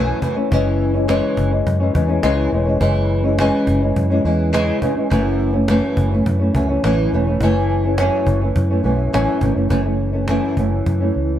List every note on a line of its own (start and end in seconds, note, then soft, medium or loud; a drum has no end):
0.00 0.11 B1 medium
0.00 0.20 F#2 medium
0.00 0.21 E3 medium
0.00 0.21 A3 medium
0.00 0.22 C#4 loud
0.21 0.36 F#2 medium
0.21 0.37 E3 medium
0.21 0.36 A3 medium
0.21 0.35 C#4 medium
0.21 cajon bass medium
0.36 0.51 E3 soft
0.36 0.51 A3 medium
0.36 0.51 C#4 medium
0.36 cajon slap soft
0.51 1.20 F#1 loud
0.51 0.94 C#3 medium
0.51 0.95 E3 medium
0.51 0.94 G#3 medium
0.51 0.93 C#4 medium
0.51 cajon bass loud
0.67 cajon slap soft
0.82 cajon slap soft
0.94 1.07 E3 soft
0.94 1.08 G#3 medium
0.94 1.08 C#4 medium
0.94 cajon slap soft
1.07 1.51 C#3 medium
1.07 1.51 E3 medium
1.07 1.51 G#3 medium
1.07 1.50 C#4 medium
1.07 cajon slap loud
1.37 1.60 F#1 loud
1.37 cajon bass medium
1.51 1.81 E3 soft
1.51 1.80 G#3 medium
1.51 1.79 C#4 medium
1.51 cajon slap soft
1.67 1.89 F#2 loud
1.67 cajon bass loud
1.80 1.93 E3 soft
1.80 1.94 G#3 soft
1.80 1.95 C#4 medium
1.80 cajon slap soft
1.94 2.18 E2 medium
1.94 2.09 C#3 medium
1.94 2.09 E3 medium
1.94 2.08 G#3 medium
1.94 2.07 C#4 medium
1.94 cajon bass loud
2.08 2.22 E3 soft
2.08 2.22 G#3 medium
2.08 2.23 C#4 medium
2.08 cajon slap soft
2.22 2.47 C#2 medium
2.22 2.51 C#3 medium
2.22 2.52 E3 medium
2.22 2.52 G#3 loud
2.22 2.53 C#4 medium
2.22 cajon slap loud
2.52 2.75 E1 medium
2.52 2.67 C#3 medium
2.52 2.67 E3 medium
2.52 2.66 G#3 medium
2.52 2.64 C#4 medium
2.52 cajon slap soft
2.66 2.79 E3 soft
2.66 2.80 G#3 medium
2.66 2.80 C#4 medium
2.66 cajon slap soft
2.80 3.49 F#1 loud
2.80 3.24 C#3 medium
2.80 3.24 E3 medium
2.80 3.24 G#3 medium
2.80 3.23 C#4 loud
2.80 cajon bass loud
3.10 cajon slap soft
3.24 3.38 E3 medium
3.24 3.39 G#3 medium
3.24 3.38 C#4 medium
3.24 cajon slap soft
3.38 3.82 C#3 medium
3.38 3.82 E3 medium
3.38 3.81 G#3 loud
3.38 3.80 C#4 loud
3.38 cajon slap loud
3.67 3.91 F#1 loud
3.67 cajon bass medium
3.81 4.11 E3 medium
3.81 4.10 G#3 medium
3.81 4.09 C#4 medium
3.81 cajon slap soft
3.96 4.19 F#2 loud
3.96 cajon bass medium
4.10 4.24 E3 soft
4.10 4.25 G#3 medium
4.10 4.25 C#4 medium
4.10 cajon slap soft
4.24 4.71 E2 loud
4.24 4.51 C#3 medium
4.24 4.52 E3 medium
4.24 4.52 G#3 medium
4.24 4.53 C#4 medium
4.24 cajon slap soft
4.40 cajon slap soft
4.52 4.80 C#3 medium
4.52 4.81 E3 medium
4.52 4.81 G#3 loud
4.52 4.82 C#4 medium
4.52 cajon slap loud
4.81 4.96 C#3 medium
4.81 4.97 E3 medium
4.81 4.96 G#3 medium
4.81 4.94 C#4 medium
4.81 cajon bass medium
4.96 5.09 E3 soft
4.96 5.11 G#3 medium
4.96 5.11 C#4 medium
4.96 cajon slap soft
5.10 5.80 F#1 loud
5.10 5.54 F#2 medium
5.10 5.54 E3 medium
5.10 5.54 A3 medium
5.10 5.52 C#4 medium
5.10 cajon bass loud
5.26 cajon slap soft
5.41 cajon slap soft
5.54 5.68 E3 medium
5.54 5.68 A3 medium
5.54 5.68 C#4 medium
5.54 cajon slap soft
5.68 6.12 F#2 loud
5.68 6.12 E3 medium
5.68 6.12 A3 loud
5.68 6.11 C#4 medium
5.68 cajon slap loud
5.97 6.20 F#1 loud
5.97 cajon bass medium
6.12 6.41 E3 medium
6.12 6.40 A3 medium
6.12 6.38 C#4 medium
6.12 cajon slap soft
6.26 6.49 F#2 loud
6.26 cajon bass medium
6.39 6.54 E3 soft
6.39 6.54 A3 medium
6.39 6.54 C#4 medium
6.39 cajon slap soft
6.54 6.78 C#2 medium
6.54 6.69 F#2 medium
6.54 6.69 E3 medium
6.54 6.69 A3 medium
6.54 6.68 C#4 medium
6.54 cajon bass loud
6.69 6.82 E3 soft
6.69 6.83 A3 medium
6.69 6.84 C#4 medium
6.69 cajon slap soft
6.83 7.06 A1 loud
6.83 7.11 F#2 medium
6.83 7.12 E3 loud
6.83 7.13 A3 loud
6.83 7.13 C#4 medium
6.83 cajon slap loud
7.12 7.35 E1 loud
7.12 7.27 F#2 medium
7.12 7.27 E3 medium
7.12 7.27 A3 medium
7.12 7.26 C#4 medium
7.12 cajon slap soft
7.27 7.41 E3 soft
7.27 7.42 A3 medium
7.27 7.41 C#4 medium
7.27 cajon slap soft
7.40 8.09 F#1 loud
7.40 7.84 F#2 medium
7.40 7.85 E3 medium
7.40 7.84 A3 loud
7.40 7.83 C#4 medium
7.40 cajon bass loud
7.70 cajon slap soft
7.83 7.97 E3 soft
7.83 7.97 A3 medium
7.83 7.98 C#4 medium
7.83 cajon slap soft
7.97 8.41 F#2 medium
7.97 8.41 E3 medium
7.97 8.42 A3 medium
7.97 8.40 C#4 loud
7.97 cajon slap loud
8.27 8.50 F#1 loud
8.27 cajon bass medium
8.41 8.71 E3 medium
8.41 8.70 A3 soft
8.41 8.69 C#4 medium
8.41 cajon slap soft
8.56 8.79 F#2 loud
8.56 cajon bass loud
8.70 8.83 E3 soft
8.70 8.84 A3 medium
8.70 8.85 C#4 medium
8.83 9.07 B1 medium
8.83 9.11 F#2 medium
8.83 9.12 E3 medium
8.83 9.13 A3 medium
8.83 9.13 C#4 medium
8.83 cajon slap soft
9.00 cajon slap soft
9.13 9.25 A1 medium
9.13 9.39 F#2 loud
9.13 9.40 E3 medium
9.13 9.41 A3 medium
9.13 9.42 C#4 loud
9.13 cajon slap loud
9.40 9.53 G#1 loud
9.40 9.56 F#2 medium
9.40 9.56 E3 medium
9.40 9.56 A3 medium
9.40 9.54 C#4 medium
9.40 cajon bass medium
9.55 9.68 F#1 medium
9.55 9.69 E3 soft
9.55 9.69 A3 medium
9.55 9.69 C#4 medium
9.55 cajon slap soft
9.69 10.39 F#1 loud
9.69 9.84 F#2 medium
9.69 9.85 E3 medium
9.69 9.85 A3 medium
9.69 9.83 C#4 medium
9.69 cajon bass loud
9.84 10.14 E3 soft
9.84 10.13 A3 medium
9.84 10.12 C#4 soft
10.00 cajon slap soft
10.13 10.27 E3 soft
10.13 10.27 A3 soft
10.13 10.28 C#4 medium
10.28 10.56 F#2 medium
10.28 10.57 E3 medium
10.28 10.57 A3 medium
10.28 10.58 C#4 medium
10.28 cajon slap loud
10.57 10.80 F#1 medium
10.57 11.01 F#2 medium
10.57 11.01 E3 medium
10.57 11.01 A3 medium
10.57 10.99 C#4 medium
10.57 cajon bass medium
10.86 11.09 F#2 loud
10.86 cajon bass medium
11.00 11.39 E3 soft
11.00 11.39 A3 soft
11.00 11.39 C#4 soft
11.15 11.38 C#2 medium
11.15 cajon slap soft
11.30 cajon slap soft